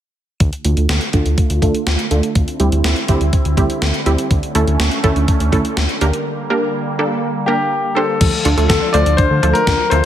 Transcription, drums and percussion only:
0.40 kick, closed hi-hat
0.53 closed hi-hat
0.65 closed hi-hat
0.77 closed hi-hat
0.89 snare, closed hi-hat
1.01 closed hi-hat
1.13 kick, closed hi-hat
1.26 closed hi-hat
1.38 kick, closed hi-hat
1.50 closed hi-hat
1.62 kick, closed hi-hat
1.75 closed hi-hat
1.87 snare, closed hi-hat
1.99 closed hi-hat
2.11 closed hi-hat
2.23 closed hi-hat
2.35 kick, closed hi-hat
2.48 closed hi-hat
2.60 closed hi-hat
2.72 closed hi-hat
2.84 snare, closed hi-hat
2.96 closed hi-hat
3.08 kick, closed hi-hat
3.21 closed hi-hat
3.33 kick, closed hi-hat
3.45 closed hi-hat
3.57 kick, closed hi-hat
3.70 closed hi-hat
3.82 snare, closed hi-hat
3.94 closed hi-hat
4.06 closed hi-hat
4.18 closed hi-hat
4.31 kick, closed hi-hat
4.43 closed hi-hat
4.55 closed hi-hat
4.68 closed hi-hat
4.80 snare, closed hi-hat
4.92 closed hi-hat
5.04 kick, closed hi-hat
5.16 closed hi-hat
5.28 kick, closed hi-hat
5.40 closed hi-hat
5.52 kick, closed hi-hat
5.65 closed hi-hat
5.77 snare, closed hi-hat
5.89 closed hi-hat
6.01 closed hi-hat
6.13 closed hi-hat
8.21 kick, closed hi-hat, crash
8.45 closed hi-hat
8.58 closed hi-hat
8.69 kick, snare, closed hi-hat
8.94 closed hi-hat
9.06 closed hi-hat
9.18 kick, closed hi-hat
9.43 closed hi-hat
9.55 closed hi-hat
9.67 kick, snare, closed hi-hat
9.91 closed hi-hat

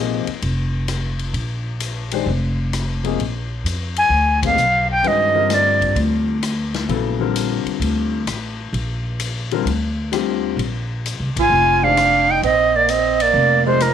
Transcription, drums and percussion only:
0.27 ride
0.42 ride
0.88 cross-stick, hi-hat pedal, ride
1.19 ride
1.34 ride
1.80 hi-hat pedal, ride
2.11 ride
2.73 cross-stick, hi-hat pedal, ride
3.04 ride
3.20 ride
3.66 hi-hat pedal, ride
3.96 ride
4.43 kick, ride
4.58 hi-hat pedal
5.04 ride
5.50 snare, hi-hat pedal, ride
5.82 kick, ride
5.96 ride
6.43 cross-stick, hi-hat pedal, ride
6.74 snare, ride
6.89 ride
7.36 hi-hat pedal, ride
7.67 ride
7.82 ride
8.27 cross-stick, hi-hat pedal, ride
8.74 ride
9.20 hi-hat pedal, ride
9.51 ride
9.67 ride
10.13 cross-stick, hi-hat pedal, ride
10.59 ride
11.06 hi-hat pedal, ride
11.36 kick, ride
11.97 cross-stick, hi-hat pedal, ride
12.43 ride
12.89 hi-hat pedal, ride
13.20 ride
13.80 cross-stick, hi-hat pedal, ride

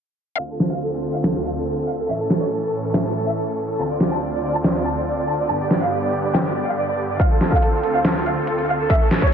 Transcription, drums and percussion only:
0.60 snare
1.24 snare
2.30 snare
2.94 snare
4.00 snare
4.64 snare
5.71 snare
6.35 snare
7.20 kick, closed hi-hat
7.41 snare, closed hi-hat
7.52 kick
7.62 closed hi-hat
7.83 closed hi-hat
8.05 snare, closed hi-hat
8.26 closed hi-hat
8.47 closed hi-hat
8.58 closed hi-hat
8.90 kick, closed hi-hat
9.11 snare, closed hi-hat
9.22 kick

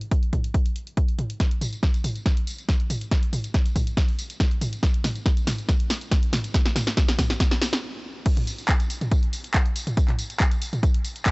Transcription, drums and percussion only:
0.01 closed hi-hat
0.11 kick, closed hi-hat
0.23 closed hi-hat
0.33 kick, closed hi-hat, mid tom
0.44 closed hi-hat
0.54 kick, closed hi-hat
0.66 closed hi-hat
0.76 closed hi-hat
0.87 closed hi-hat
0.97 kick, closed hi-hat
1.08 closed hi-hat
1.19 closed hi-hat, mid tom
1.30 closed hi-hat
1.40 kick, snare, closed hi-hat, tambourine
1.51 closed hi-hat
1.61 mid tom, open hi-hat, tambourine
1.73 closed hi-hat, tambourine
1.83 kick, snare, closed hi-hat, tambourine
1.94 closed hi-hat, tambourine
2.04 mid tom, open hi-hat, tambourine
2.16 closed hi-hat, tambourine
2.26 kick, snare, closed hi-hat, tambourine
2.37 closed hi-hat
2.47 open hi-hat, tambourine
2.58 closed hi-hat, tambourine
2.69 kick, snare, closed hi-hat, tambourine
2.80 closed hi-hat
2.90 mid tom, open hi-hat, tambourine
3.01 closed hi-hat, tambourine
3.11 kick, snare, closed hi-hat, tambourine
3.23 closed hi-hat
3.33 mid tom, open hi-hat, tambourine
3.44 closed hi-hat, tambourine
3.54 kick, snare, closed hi-hat, tambourine
3.66 closed hi-hat, tambourine
3.76 kick, mid tom, open hi-hat, tambourine
3.87 closed hi-hat, tambourine
3.97 kick, snare, closed hi-hat, tambourine
4.08 open hi-hat
4.19 open hi-hat, tambourine
4.30 closed hi-hat, tambourine
4.40 kick, snare, closed hi-hat, tambourine
4.51 closed hi-hat
4.61 mid tom, open hi-hat, tambourine
4.73 closed hi-hat, tambourine
4.83 kick, snare, closed hi-hat, tambourine
4.94 closed hi-hat
5.04 snare, mid tom, open hi-hat, tambourine
5.16 closed hi-hat, tambourine
5.26 kick, snare, closed hi-hat, tambourine
5.37 closed hi-hat, tambourine
5.47 snare, mid tom, open hi-hat, tambourine
5.58 closed hi-hat, tambourine
5.69 kick, snare, closed hi-hat, tambourine
5.80 closed hi-hat
5.90 snare, open hi-hat, tambourine
6.01 closed hi-hat, tambourine
6.11 kick, snare, closed hi-hat, tambourine
6.23 closed hi-hat
6.33 snare, mid tom, open hi-hat, tambourine
6.44 closed hi-hat, tambourine
6.54 kick, snare, closed hi-hat, tambourine
6.66 snare, closed hi-hat, tambourine
6.76 snare, mid tom, open hi-hat, tambourine
6.87 snare, closed hi-hat
6.97 kick, snare, closed hi-hat, tambourine
7.08 snare, closed hi-hat, tambourine
7.19 kick, snare, mid tom, open hi-hat, tambourine
7.30 snare, closed hi-hat, tambourine
7.40 kick, snare, closed hi-hat, tambourine
7.51 snare, open hi-hat
7.61 snare, open hi-hat, tambourine
7.73 snare, closed hi-hat, tambourine
8.26 kick, closed hi-hat, tambourine, crash
8.37 closed hi-hat, mid tom
8.47 open hi-hat, tambourine
8.58 closed hi-hat, tambourine
8.69 kick, clap, closed hi-hat, tambourine
8.80 closed hi-hat, tambourine
8.90 open hi-hat, tambourine
9.01 closed hi-hat, mid tom, tambourine
9.11 kick, closed hi-hat, tambourine
9.23 closed hi-hat
9.33 open hi-hat, tambourine
9.44 closed hi-hat, tambourine
9.54 kick, clap, closed hi-hat, tambourine
9.66 closed hi-hat
9.76 open hi-hat, tambourine
9.87 closed hi-hat, mid tom, tambourine
9.97 kick, closed hi-hat, tambourine
10.08 clap, closed hi-hat, mid tom
10.19 open hi-hat, tambourine
10.30 closed hi-hat, tambourine
10.40 kick, clap, closed hi-hat, tambourine
10.51 closed hi-hat, tambourine
10.62 open hi-hat, tambourine
10.73 closed hi-hat, mid tom, tambourine
10.83 kick, closed hi-hat, tambourine
10.94 closed hi-hat
11.04 open hi-hat, tambourine
11.16 closed hi-hat, tambourine
11.26 kick, clap, closed hi-hat, tambourine

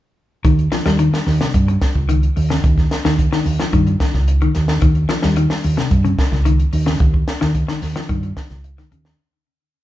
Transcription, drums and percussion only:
0.45 kick, closed hi-hat
0.59 closed hi-hat
0.72 snare, closed hi-hat
0.86 snare, closed hi-hat
0.99 closed hi-hat
1.14 snare, closed hi-hat
1.27 snare, open hi-hat
1.41 snare, closed hi-hat
1.54 kick, closed hi-hat
1.69 closed hi-hat
1.81 kick, snare, closed hi-hat
1.95 kick
2.09 closed hi-hat
2.23 closed hi-hat
2.37 open hi-hat
2.50 snare
2.64 kick, closed hi-hat
2.78 kick, snare
2.91 snare, closed hi-hat
3.05 snare
3.19 kick, closed hi-hat
3.33 snare
3.46 open hi-hat
3.60 snare, closed hi-hat
3.73 kick, closed hi-hat
3.87 closed hi-hat
4.00 kick, snare, closed hi-hat
4.14 kick, snare, closed hi-hat
4.28 closed hi-hat
4.42 closed hi-hat
4.55 snare, closed hi-hat
4.68 snare, closed hi-hat
4.82 kick, closed hi-hat
4.95 closed hi-hat
5.09 snare, closed hi-hat
5.22 snare, closed hi-hat
5.36 closed hi-hat
5.50 snare, closed hi-hat
5.64 open hi-hat
5.78 snare, closed hi-hat
5.91 kick, closed hi-hat
6.05 closed hi-hat
6.18 kick, snare, closed hi-hat
6.32 kick, snare
6.46 closed hi-hat
6.60 closed hi-hat
6.73 open hi-hat
6.87 snare
7.00 kick, closed hi-hat
7.14 kick
7.28 snare, closed hi-hat
7.41 snare
7.55 kick, closed hi-hat
7.68 snare
7.82 snare, open hi-hat
7.96 snare, closed hi-hat
8.09 kick, closed hi-hat
8.23 closed hi-hat
8.37 kick, snare, closed hi-hat
8.51 kick, snare, closed hi-hat
8.64 closed hi-hat
8.78 snare, closed hi-hat
8.92 closed hi-hat
9.05 snare, closed hi-hat

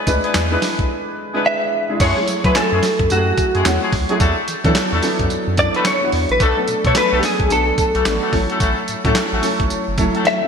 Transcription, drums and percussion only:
0.07 kick, closed hi-hat, tambourine
0.24 closed hi-hat
0.34 snare, clap, closed hi-hat, tambourine
0.62 snare, open hi-hat, tambourine
0.79 kick, closed hi-hat
2.00 kick, closed hi-hat, crash, tambourine
2.28 closed hi-hat, tambourine
2.44 kick, closed hi-hat
2.55 snare, clap, closed hi-hat, tambourine
2.83 snare, open hi-hat, tambourine
2.99 kick, closed hi-hat
3.10 closed hi-hat, tambourine
3.37 kick, closed hi-hat, tambourine
3.55 closed hi-hat
3.65 snare, clap, closed hi-hat, tambourine
3.93 kick, open hi-hat
4.09 closed hi-hat
4.20 kick, closed hi-hat, tambourine
4.48 closed hi-hat, tambourine
4.65 kick, closed hi-hat
4.75 snare, clap, closed hi-hat, tambourine
5.03 open hi-hat, tambourine
5.19 kick, closed hi-hat
5.30 closed hi-hat, tambourine
5.57 kick, closed hi-hat, tambourine
5.74 closed hi-hat
5.85 snare, clap, closed hi-hat, tambourine
6.12 open hi-hat
6.29 closed hi-hat
6.40 kick, closed hi-hat, tambourine
6.68 closed hi-hat, tambourine
6.85 kick, closed hi-hat
6.95 snare, clap, closed hi-hat, tambourine
7.23 snare, open hi-hat, tambourine
7.40 kick, closed hi-hat
7.50 closed hi-hat, tambourine
7.78 kick, closed hi-hat, tambourine
7.95 closed hi-hat
8.05 snare, clap, closed hi-hat, tambourine
8.33 kick, open hi-hat
8.50 closed hi-hat
8.60 kick, closed hi-hat, tambourine
8.88 closed hi-hat, tambourine
9.05 kick, closed hi-hat
9.15 snare, clap, closed hi-hat, tambourine
9.43 open hi-hat, tambourine
9.60 kick, closed hi-hat
9.70 closed hi-hat, tambourine
9.98 kick, closed hi-hat, tambourine
10.15 closed hi-hat
10.25 snare, closed hi-hat

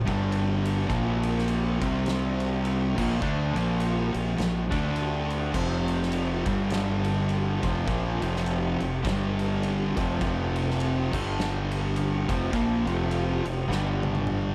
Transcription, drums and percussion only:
0.08 kick, ride
0.32 ride
0.65 ride
0.90 kick, ride
1.23 ride
1.38 snare
1.48 ride
1.82 kick, ride
2.06 snare, ride
2.40 ride
2.65 ride
2.98 kick, crash
3.22 kick
3.56 ride
3.80 ride
4.14 ride
4.38 snare, ride
4.72 kick, ride
4.96 ride
5.30 ride
5.54 kick, crash
5.88 ride
6.03 snare
6.12 ride
6.46 kick, ride
6.70 snare, ride
7.04 ride
7.29 ride
7.63 kick, ride
7.88 kick, ride
8.22 ride
8.36 snare
8.46 ride
8.80 ride
9.05 kick, snare, ride
9.39 ride
9.63 ride
9.97 kick, ride
10.21 kick, ride
10.56 ride
10.70 snare
10.80 ride
11.13 kick, crash
11.40 snare
11.71 ride
11.96 ride
12.29 kick, ride
12.53 kick, ride
12.87 ride
13.11 ride
13.45 ride
13.72 snare
14.03 high tom
14.15 high tom
14.27 mid tom

